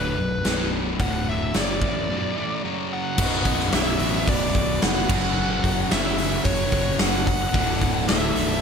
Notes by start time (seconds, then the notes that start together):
Already playing: D1 D2 A2 D3 B4
0.18 B0 B1 F#2
0.43 B0 B1 F#2 B2, snare, open hi-hat
0.98 D1 D2 A2 D3 F#5, kick, open hi-hat
1.29 E5
1.54 F#1 F#2 C#3 F#3 D5, snare, open hi-hat
1.81 A1 A2 E3 A3, kick
2.09 B1 F#2 B2
2.37 A2 E3 A3
2.63 F#2 C#3 F#3
2.93 F#5
3.18 B0 B1 F#2 B2 B3 F#4 B4, kick, crash
3.45 B0, kick, open hi-hat
3.60 snare
3.72 B0 E5, snare, open hi-hat
3.99 A1 B1 F#2 B2, open hi-hat
4.28 B0 D5, kick, open hi-hat
4.55 B0, kick, open hi-hat
4.81 F1 B1 F#2 B2 F#5, snare, open hi-hat
5.09 F#1 F#2 C#3 F#3 F#5, kick, crash
5.38 F#1
5.64 F#1, kick, open hi-hat
5.90 F#1 F#2 C#3 F#3 E5, snare, open hi-hat
6.18 snare, open hi-hat
6.44 F#1 C#5, kick, open hi-hat
6.72 F#1 F#2 C#3 F#3, kick, open hi-hat
6.99 F#1 F#5, snare, open hi-hat
7.27 F#5, kick, open hi-hat
7.54 D1 D2 A2 D3 D4 A4 E5, kick, open hi-hat
7.81 D1, kick, open hi-hat
8.08 D1 E5, snare, open hi-hat
8.35 B0 D2 A2 D3, snare, open hi-hat